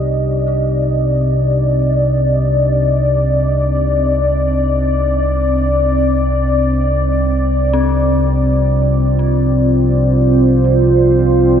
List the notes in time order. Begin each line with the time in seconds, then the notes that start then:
Already playing: C2 C3 C4 D#4 G4 D5 D#5
7.37 F4
7.73 C4
7.91 C5
10.10 G5
10.99 F5